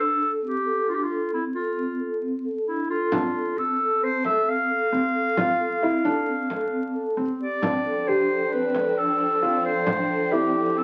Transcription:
0.00 0.17 D4 medium
0.00 0.31 A4 medium
0.20 0.39 A4 medium
0.42 0.62 C4 medium
0.42 0.90 G4 medium
0.65 0.85 A4 medium
0.87 1.07 D4 medium
0.87 0.96 F4 medium
0.95 1.05 G4 medium
1.03 1.33 F4 medium
1.10 1.30 A4 medium
1.33 1.52 C4 medium
1.33 1.43 E4 medium
1.55 2.36 F4 medium
1.55 1.74 A4 medium
1.77 1.97 C4 medium
2.00 2.19 A4 medium
2.22 2.42 C4 medium
2.45 2.64 A4 medium
2.67 2.87 D4 medium
2.67 2.88 E4 medium
2.90 3.60 F4 medium
2.90 3.09 A4 medium
3.12 3.32 C4 medium
3.12 4.88 D4 medium
3.12 frame drum medium
3.34 3.54 A4 medium
3.34 frame drum soft
3.57 3.77 C4 medium
3.57 4.05 A4 medium
3.57 frame drum soft
3.80 3.99 A4 medium
4.02 4.22 C4 medium
4.02 4.25 C5 medium
4.24 4.44 A4 medium
4.24 4.50 E5 medium
4.24 frame drum soft
4.47 4.67 C4 medium
4.47 7.17 F5 medium
4.70 4.89 A4 medium
4.92 5.12 C4 medium
4.92 5.39 C4 medium
5.14 5.34 A4 medium
5.37 5.57 C4 medium
5.37 5.84 F4 medium
5.37 frame drum medium
5.59 5.79 A4 medium
5.59 frame drum soft
5.82 6.01 C4 medium
5.82 6.05 E4 medium
6.05 7.20 D4 medium
6.05 6.24 A4 medium
6.27 6.47 C4 medium
6.50 6.69 A4 medium
6.50 frame drum soft
6.72 6.91 C4 medium
6.95 7.14 A4 medium
7.17 7.59 C4 medium
7.17 7.37 C4 medium
7.40 7.59 G4 medium
7.40 8.09 D5 medium
7.62 10.84 F3 medium
7.62 7.82 C4 medium
7.62 10.84 C4 medium
7.62 8.08 D4 medium
7.62 10.84 D4 medium
7.62 frame drum medium
7.85 8.04 A4 medium
7.85 frame drum soft
8.07 8.27 D4 medium
8.07 9.46 G4 medium
8.07 8.54 C5 medium
8.30 8.49 A4 medium
8.52 8.72 C4 medium
8.52 8.99 B4 medium
8.75 8.94 A4 medium
8.75 frame drum soft
8.97 9.16 D4 medium
8.97 9.64 A4 medium
9.19 9.39 A4 medium
9.42 9.61 C4 medium
9.42 10.35 F4 medium
9.64 9.84 A4 medium
9.64 10.33 C5 medium
9.87 10.06 D4 medium
9.87 frame drum medium
10.09 10.29 A4 medium
10.09 frame drum soft
10.32 10.52 C4 medium
10.32 10.84 E4 medium
10.32 10.79 G4 medium
10.54 10.74 A4 medium
10.77 10.84 C4 medium
10.77 10.84 A4 medium

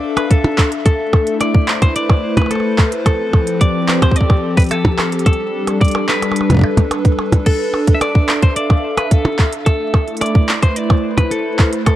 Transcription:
0.00 1.74 D4 medium
0.00 1.74 A4 medium
0.00 0.17 D5 loud
0.00 1.74 E5 medium
0.00 0.86 F5 medium
0.17 0.31 B4 medium
0.17 closed hi-hat soft
0.17 percussion blips medium
0.31 0.69 A4 loud
0.31 kick loud
0.31 closed hi-hat medium
0.44 percussion blips medium
0.58 kick loud
0.58 clap loud
0.72 closed hi-hat soft
0.86 3.06 A3 medium
0.86 1.37 A4 loud
0.86 kick loud
0.86 closed hi-hat medium
0.86 percussion blips medium
1.13 3.76 E4 medium
1.13 kick loud
1.13 percussion blips medium
1.27 closed hi-hat medium
1.41 1.79 D5 loud
1.41 closed hi-hat medium
1.41 percussion blips medium
1.45 3.94 C5 medium
1.54 kick loud
1.68 3.94 B4 medium
1.68 clap loud
1.82 1.96 C5 medium
1.82 kick loud
1.82 closed hi-hat medium
1.82 percussion blips soft
1.96 2.37 D5 loud
1.96 closed hi-hat medium
2.10 kick loud
2.10 percussion blips medium
2.37 2.51 B4 medium
2.37 kick loud
2.37 closed hi-hat soft
2.37 percussion blips medium
2.37 percussion blips soft
2.42 percussion blips soft
2.46 percussion blips soft
2.51 2.89 A4 medium
2.51 closed hi-hat medium
2.51 percussion blips soft
2.55 percussion blips soft
2.60 percussion blips soft
2.78 kick loud
2.78 clap loud
2.78 percussion blips medium
2.92 closed hi-hat soft
3.06 5.26 F3 medium
3.06 3.63 A4 loud
3.06 kick loud
3.06 closed hi-hat medium
3.06 percussion blips medium
3.12 5.26 C4 medium
3.33 6.14 G4 medium
3.33 kick loud
3.33 percussion blips medium
3.47 closed hi-hat medium
3.61 4.02 D5 loud
3.61 kick loud
3.61 closed hi-hat medium
3.88 clap loud
3.88 percussion blips medium
4.02 10.54 A4 medium
4.02 4.16 C5 medium
4.02 kick loud
4.02 closed hi-hat medium
4.02 percussion blips medium
4.11 kick medium
4.16 4.57 D5 loud
4.16 closed hi-hat medium
4.21 kick medium
4.30 kick loud
4.30 percussion blips medium
4.57 4.62 B4 medium
4.57 kick loud
4.57 closed hi-hat soft
4.60 closed hi-hat soft
4.62 closed hi-hat soft
4.64 closed hi-hat soft
4.66 closed hi-hat soft
4.69 closed hi-hat soft
4.71 5.12 A4 medium
4.71 closed hi-hat medium
4.71 percussion blips medium
4.85 kick loud
4.85 percussion blips medium
4.98 clap loud
4.98 percussion blips medium
5.12 closed hi-hat soft
5.19 closed hi-hat soft
5.26 7.46 G3 medium
5.26 5.77 A4 medium
5.26 kick loud
5.26 closed hi-hat medium
5.26 percussion blips medium
5.33 10.41 D4 medium
5.33 closed hi-hat soft
5.67 closed hi-hat medium
5.67 percussion blips medium
5.81 6.08 D5 loud
5.81 kick loud
5.81 closed hi-hat soft
5.85 closed hi-hat soft
5.88 closed hi-hat soft
5.91 closed hi-hat medium
5.91 percussion blips medium
6.09 6.87 B4 medium
6.09 8.34 B4 medium
6.09 clap loud
6.22 closed hi-hat medium
6.22 percussion blips medium
6.32 percussion blips soft
6.36 closed hi-hat medium
6.41 percussion blips soft
6.50 kick medium
6.50 closed hi-hat soft
6.50 percussion blips medium
6.52 kick medium
6.54 kick medium
6.57 kick medium
6.59 kick medium
6.61 kick loud
6.61 percussion blips medium
6.77 kick loud
6.77 closed hi-hat medium
6.77 percussion blips medium
6.91 closed hi-hat medium
6.91 percussion blips medium
7.05 kick loud
7.05 closed hi-hat soft
7.19 percussion blips medium
7.32 kick loud
7.32 closed hi-hat medium
7.32 percussion blips medium
7.46 7.96 A4 medium
7.46 kick loud
7.46 closed hi-hat medium
7.46 crash medium
7.74 percussion blips medium
7.87 kick loud
7.87 closed hi-hat medium
7.94 8.01 E5 medium
8.01 8.40 D5 medium
8.01 closed hi-hat medium
8.01 percussion blips medium
8.07 10.54 E5 medium
8.15 kick loud
8.29 clap loud
8.29 percussion blips medium
8.42 8.56 C5 medium
8.42 9.66 F5 medium
8.42 kick loud
8.42 closed hi-hat medium
8.56 8.97 D5 medium
8.56 closed hi-hat medium
8.70 kick loud
8.70 percussion blips medium
8.97 9.11 B4 medium
8.97 closed hi-hat medium
8.97 percussion blips medium
9.11 9.53 A4 medium
9.11 kick loud
9.11 closed hi-hat medium
9.25 percussion blips medium
9.39 kick loud
9.39 clap loud
9.53 closed hi-hat medium
9.66 11.87 A3 medium
9.66 10.18 A4 medium
9.66 kick loud
9.66 closed hi-hat medium
9.66 percussion blips medium
9.94 kick loud
9.94 percussion blips medium
10.02 11.96 E4 medium
10.08 closed hi-hat soft
10.17 closed hi-hat soft
10.21 11.96 B4 medium
10.21 10.60 D5 medium
10.21 closed hi-hat medium
10.21 percussion blips medium
10.26 closed hi-hat soft
10.35 kick loud
10.49 clap loud
10.62 10.76 C5 medium
10.62 11.96 C5 medium
10.62 kick loud
10.62 closed hi-hat medium
10.62 percussion blips medium
10.76 11.17 D5 loud
10.76 closed hi-hat medium
10.90 kick loud
10.90 percussion blips medium
11.17 11.32 B4 medium
11.17 kick loud
11.17 closed hi-hat medium
11.17 percussion blips medium
11.31 11.70 A4 medium
11.31 closed hi-hat medium
11.59 kick loud
11.59 clap loud
11.59 percussion blips medium
11.73 closed hi-hat medium
11.86 11.96 F3 medium
11.86 11.96 A4 medium
11.86 kick loud
11.86 closed hi-hat medium
11.86 percussion blips medium

